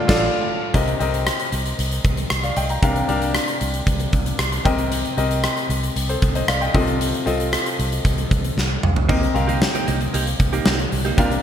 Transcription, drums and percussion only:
0.09 kick, snare, crash
0.74 kick, closed hi-hat
0.88 closed hi-hat
1.00 closed hi-hat
1.14 closed hi-hat
1.27 cross-stick, closed hi-hat
1.40 closed hi-hat
1.52 closed hi-hat
1.66 closed hi-hat
1.79 closed hi-hat
1.91 closed hi-hat
2.04 kick, closed hi-hat
2.17 closed hi-hat
2.30 cross-stick, closed hi-hat
2.43 closed hi-hat
2.56 closed hi-hat
2.69 closed hi-hat
2.83 kick, closed hi-hat
2.96 closed hi-hat
3.09 closed hi-hat
3.22 closed hi-hat
3.34 cross-stick, closed hi-hat
3.48 closed hi-hat
3.61 closed hi-hat
3.74 closed hi-hat
3.87 kick, closed hi-hat
4.00 closed hi-hat
4.13 kick, closed hi-hat
4.26 closed hi-hat
4.39 cross-stick, closed hi-hat
4.52 closed hi-hat
4.65 kick, closed hi-hat
4.78 closed hi-hat
4.92 closed hi-hat
5.05 closed hi-hat
5.18 closed hi-hat
5.31 closed hi-hat
5.44 cross-stick, closed hi-hat
5.57 closed hi-hat
5.70 closed hi-hat
5.83 closed hi-hat
5.96 closed hi-hat
6.09 closed hi-hat
6.22 kick, closed hi-hat
6.35 closed hi-hat
6.48 cross-stick, closed hi-hat
6.61 closed hi-hat
6.75 kick, open hi-hat
6.87 closed hi-hat
7.01 closed hi-hat
7.14 closed hi-hat
7.27 closed hi-hat
7.40 closed hi-hat
7.53 cross-stick, closed hi-hat
7.66 closed hi-hat
7.80 closed hi-hat
7.92 closed hi-hat
8.05 kick, closed hi-hat
8.18 closed hi-hat
8.31 kick, closed hi-hat
8.44 closed hi-hat
8.58 snare
8.83 mid tom
8.96 floor tom
9.09 kick, splash
9.23 closed hi-hat
9.36 closed hi-hat
9.49 closed hi-hat
9.62 snare
9.75 closed hi-hat
9.88 closed hi-hat
10.01 closed hi-hat
10.14 closed hi-hat
10.27 closed hi-hat
10.40 kick, closed hi-hat
10.53 closed hi-hat
10.66 snare
10.79 closed hi-hat
10.92 open hi-hat
11.05 closed hi-hat
11.18 kick, closed hi-hat
11.31 closed hi-hat

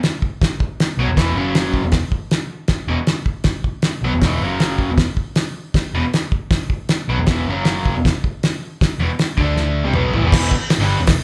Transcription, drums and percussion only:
0.03 snare, open hi-hat
0.22 kick
0.42 kick, snare, open hi-hat
0.60 kick
0.80 snare, open hi-hat
1.17 kick, snare, open hi-hat
1.55 snare, open hi-hat
1.74 kick
1.92 kick, snare, open hi-hat
2.12 kick
2.31 snare, open hi-hat
2.68 kick, snare, open hi-hat
3.07 snare, open hi-hat
3.26 kick
3.44 kick, snare, open hi-hat
3.64 kick
3.82 snare, open hi-hat
4.22 kick, snare, open hi-hat
4.60 snare, open hi-hat
4.79 kick
4.98 kick, snare, open hi-hat
5.17 kick
5.36 snare, open hi-hat
5.74 kick, snare, open hi-hat
6.14 snare, open hi-hat
6.32 kick
6.51 kick, snare, open hi-hat
6.70 kick
6.89 snare, open hi-hat
7.27 kick, snare, open hi-hat
7.65 snare, open hi-hat
7.86 kick
8.05 kick, snare, open hi-hat
8.24 kick
8.43 snare, open hi-hat
8.81 kick, snare, open hi-hat
9.19 snare, open hi-hat
9.38 kick
9.57 snare
9.94 mid tom
10.14 floor tom
10.32 kick, snare, crash
10.51 kick
10.70 snare, open hi-hat
11.07 kick, snare, open hi-hat

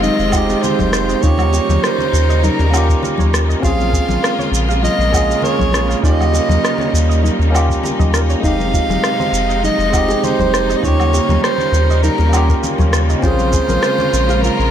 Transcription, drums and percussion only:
0.02 high bongo, high conga, shaker
0.19 shaker
0.32 kick, low woodblock, shaker
0.49 high bongo, shaker
0.64 low conga, shaker
0.79 kick, high conga, shaker
0.93 cross-stick, shaker
1.09 high bongo, shaker
1.23 kick, shaker
1.38 high conga, low woodblock, shaker
1.53 high bongo, shaker
1.70 high conga, low conga, shaker
1.84 cross-stick, shaker
1.98 low conga, shaker
2.14 high bongo, shaker
2.30 shaker
2.44 high conga, shaker
2.59 high bongo, shaker
2.74 low woodblock, shaker
2.89 kick, shaker
3.03 low conga, shaker
3.18 kick, high bongo, high conga, shaker
3.34 cross-stick, shaker
3.50 shaker
3.63 kick, high bongo, shaker
3.79 high conga, shaker
3.93 kick, shaker
4.08 high conga, low conga, shaker
4.23 cross-stick, high bongo, shaker
4.39 low conga, shaker
4.54 shaker
4.69 high bongo, shaker
4.83 high conga, shaker
5.01 shaker
5.13 kick, low woodblock, shaker
5.29 high bongo, shaker
5.42 low conga, shaker
5.59 kick, high conga, shaker
5.73 cross-stick, high bongo, shaker
5.91 shaker
6.03 kick, shaker
6.20 high conga, low woodblock, shaker
6.33 high bongo, shaker
6.49 high conga, low conga, shaker
6.65 cross-stick, shaker
6.78 high bongo, low conga, shaker
6.95 shaker
7.11 shaker
7.23 high conga, shaker
7.40 high bongo, shaker
7.55 low woodblock, shaker
7.70 kick, shaker
7.83 high bongo, low conga, shaker
7.99 kick, high conga, shaker
8.14 cross-stick, shaker
8.30 shaker
8.44 kick, shaker
8.60 high bongo, high conga, shaker
8.74 kick, shaker
8.90 high conga, low conga, shaker
9.04 cross-stick, high bongo, shaker
9.20 low conga, shaker
9.34 shaker
9.50 shaker
9.64 high bongo, high conga, shaker
9.80 shaker
9.93 kick, low woodblock, shaker
10.09 high bongo, shaker
10.23 low conga, shaker
10.39 kick, high conga, shaker
10.54 cross-stick, shaker
10.70 high bongo, shaker
10.83 kick, shaker
11.00 high conga, low woodblock, shaker
11.13 high bongo, shaker
11.29 high conga, low conga, shaker
11.44 cross-stick, shaker
11.58 low conga, shaker
11.74 high bongo, shaker
11.90 shaker
12.03 high conga, shaker
12.18 high bongo, shaker
12.33 low woodblock, shaker
12.49 kick, shaker
12.63 low conga, shaker
12.78 kick, high bongo, high conga, shaker
12.93 cross-stick, shaker
13.09 shaker
13.22 kick, high bongo, shaker
13.39 high conga, shaker
13.53 kick, shaker
13.68 high conga, low conga, shaker
13.83 cross-stick, high bongo, shaker
13.98 low conga, shaker
14.14 shaker
14.29 high bongo, shaker
14.43 high conga, shaker
14.60 shaker

